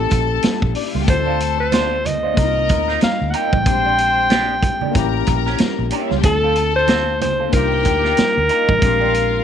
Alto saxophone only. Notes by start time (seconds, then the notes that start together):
Already playing: A4
1.09 C5
1.60 C5
2.06 D#5
3.03 F5
3.30 F#5
3.36 G5
6.25 A4
6.76 C5
7.22 C5
7.53 A#4